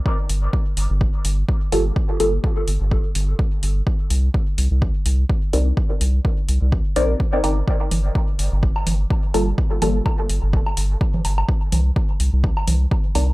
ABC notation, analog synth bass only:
X:1
M:4/4
L:1/16
Q:"Swing 16ths" 1/4=126
K:Gm
V:1 name="Analog synth bass" clef=bass
z2 G,,,2 z2 G,,, G,,,2 z G,,,2 z2 G,,,2 | z2 G,,,2 z2 G,,, G,,,2 z G,,,2 z2 G,,,2 | z2 C,,2 z2 C,, C,,2 z C,,2 z2 C,,2 | z2 C,,2 z2 C,, C,,2 z B,,,2 z2 G,,,2 |
z2 G,,,2 z2 G,,, G,,,2 z G,,,2 z2 G,,,2 | z2 G,,,2 z2 G,,, G,,,2 z G,,,2 z2 G,,,2 | z2 C,,2 z2 C,, C,,2 z C,,2 z2 C,,2 |]